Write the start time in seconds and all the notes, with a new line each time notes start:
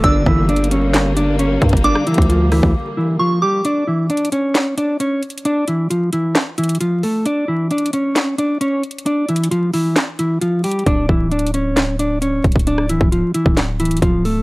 Already playing: D3
0.04 G1 G3 A#3 D4 D5 E6, kick, closed hi-hat
0.26 G1 E3 E4, kick
0.49 D4 D5, closed hi-hat
0.56 closed hi-hat
0.64 closed hi-hat
0.71 C#4 C#5, closed hi-hat
0.94 snare, clap, closed hi-hat
1.17 D4 D5, closed hi-hat
1.39 C#4 C#5, closed hi-hat
1.62 G2, kick, closed hi-hat
1.69 G1, kick, closed hi-hat
1.77 closed hi-hat
1.84 D4 D5 D6, closed hi-hat
1.95 cross-stick
2.07 E3 E4, closed hi-hat
2.14 D2, kick, closed hi-hat
2.22 closed hi-hat
2.29 F3 F4, closed hi-hat
2.52 E3 E4, cross-stick, open hi-hat
2.63 D2, kick
2.97 E3 E4
3.19 F3 F4 C#6
3.42 G3 G4 D6
3.65 D4 D5, closed hi-hat
3.87 E3 E4
4.10 D4 D5, closed hi-hat
4.17 closed hi-hat
4.25 closed hi-hat
4.32 C#4 C#5, closed hi-hat
4.55 snare, clap, closed hi-hat
4.77 D4 D5, closed hi-hat
5.00 C#4 C#5, closed hi-hat
5.23 closed hi-hat
5.30 closed hi-hat
5.38 closed hi-hat
5.45 D4 D5, closed hi-hat
5.68 E3 E4, closed hi-hat
5.90 F3 F4, closed hi-hat
6.13 E3 E4, closed hi-hat
6.35 snare, clap, closed hi-hat
6.58 E3 E4, closed hi-hat
6.63 closed hi-hat
6.69 closed hi-hat
6.75 closed hi-hat
6.80 F3 F4, closed hi-hat
7.03 A3 A4, open hi-hat
7.26 D4 D5, closed hi-hat
7.48 E3 E4
7.71 D4 D5, closed hi-hat
7.78 closed hi-hat
7.86 closed hi-hat
7.93 C#4 C#5, closed hi-hat
8.16 snare, clap, closed hi-hat
8.38 D4 D5, closed hi-hat
8.61 C#4 C#5, closed hi-hat
8.83 closed hi-hat
8.91 closed hi-hat
8.98 closed hi-hat
9.06 D4 D5, closed hi-hat
9.29 E3 E4, closed hi-hat
9.36 closed hi-hat
9.44 closed hi-hat
9.51 F3 F4, closed hi-hat
9.74 E3 E4, open hi-hat
9.96 snare, clap, closed hi-hat
10.19 E3 E4, closed hi-hat
10.41 F3 F4, closed hi-hat
10.64 G3 G4, closed hi-hat, open hi-hat
10.71 closed hi-hat
10.79 closed hi-hat
10.86 D1 D4 D5, kick, closed hi-hat
11.09 D1 E3 E4, kick
11.32 D4 D5, closed hi-hat
11.39 closed hi-hat
11.47 closed hi-hat
11.54 C#4 C#5, closed hi-hat
11.77 snare, clap, closed hi-hat
11.99 D4 D5, closed hi-hat
12.22 C#4 C#5, closed hi-hat
12.44 D1, kick, closed hi-hat
12.52 D1, kick, closed hi-hat
12.59 closed hi-hat
12.67 D4 D5, closed hi-hat
12.78 cross-stick
12.89 E3 E4, closed hi-hat
13.01 C#1, kick
13.12 F3 F4, closed hi-hat
13.34 E3 E4, closed hi-hat
13.46 D1, kick
13.57 snare, clap, closed hi-hat
13.80 E3 E4, closed hi-hat
13.85 closed hi-hat
13.91 closed hi-hat
13.97 closed hi-hat
14.02 D1 F3 F4, kick, closed hi-hat
14.25 A3 A4, open hi-hat